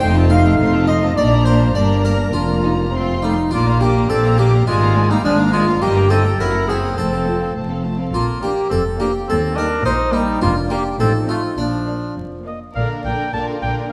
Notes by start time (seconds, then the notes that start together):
0.00 F1 F2 A3 D#4 G5 C6
0.15 C4 F4 A5
0.30 A3 D#4 F5 C6
0.44 C4 F4 A5
0.58 F1 F2 A3 D#4 C6
0.72 C4 F4 A5
0.87 A3 D#4 D#5 C6
1.02 C4 F4 A5
1.15 A#1 A#2 A#3 D4 D5 A#5
1.44 C5
1.74 G1 G2 A#3 D4 D5 A#5
2.03 A#4
2.33 F1 F2 A#3 D4 F4 A#5
2.63 D#4
2.91 A3 C4 F4 C6
3.22 G3 A3 D#4
3.51 A#1 A#2 A#3 D4 F4 D5 D6
3.66 A#3 F5 A#5
3.80 A#3 D4 G4 D5 D6
3.95 A#3 F5 A#5
4.09 A#1 A#2 C4 D4 A4 D5 D6
4.24 A#3 F5 A#5
4.38 A#3 D4 G4 D5 D6
4.52 A#3 F5 A#5
4.67 G#1 G#2 G#3 F4 D5 G#5
4.82 A#3 F5 A#5
4.96 G#3 A#3 D4 D5 G#5
5.10 G3 A#3 D#4 F5 A#5
5.24 G#1 G#2 F3 G#3 D4 D5 G#5
5.39 A#3 F5 A#5
5.52 G#3 A#3 D4 F4 D5 G#5
5.68 A#3 F5 A#5
5.81 G1 G2 G3 A#3 G4 D#5 G5
5.96 A#3 G5 A#5
6.10 G3 A#3 C4 D#4 A4 D#5 G5
6.25 A#3 G5 A#5
6.39 F#1 F#2 F#3 E4 A#4 E5 F#5
6.53 A#3 F#5 A#5
6.68 F#3 C4 E4 G#4 E5 F#5
6.82 A#3 F#5 A#5
6.96 F1 F2 A3 C4 A4 C5 A5
7.11 C4 A4 F5
7.25 F3 A3 F4 C5 A5
7.40 C4 A4 F5
7.54 F1 F2 A3 C5 A5
7.69 C4 A4 F5
7.83 F3 A3 F4 C5 A5
7.99 C4 A4 F5
8.13 A#1 A#2 A#3 F4
8.41 F3 A#3 D4 G4 D5 F5
8.69 F1 F2 C4 A4
8.99 F3 A#3 D4 G4 D5 F5
9.27 D#2 C4 A4
9.55 G3 A#3 D4 D#4 A#4 D#5 G5
9.85 A#1 A#2 D#4 C5
10.12 G3 A#3 D#4 D#5 G5
10.40 F1 F2 A#3 D4 F4
10.70 A#3 G4 D5 F5
10.99 A1 A2 F3 C4 D#4 A4
11.28 A3 C4 F4 D#5 F5
11.58 A#1 A#2 F3 D4
11.87 A#3 D5 F5
12.17 F1 F2
12.46 A#3 D5 D#5 F5
12.75 A#1 A#2 D3 A#3 D4 A#4 D5 F5
13.04 A#1 A#2 D3 D4 A#4 D5 G5
13.33 A#1 A#2 D3 D4 F4 A#4 D5 A5
13.62 A#1 A#2 D3 D4 A#4 D5 G5